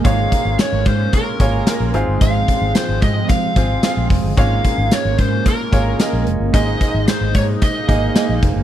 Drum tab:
HH |xxxxxxxx|xxxxxxxo|xxxxxxxx|xxxxxxxx|
TB |--x---x-|--x---x-|--x---x-|--x---x-|
SD |--o---o-|--o---o-|--o---o-|--o---o-|
BD |oo-ooo--|oo-ooo-o|oo-ooo--|oo-ooo-o|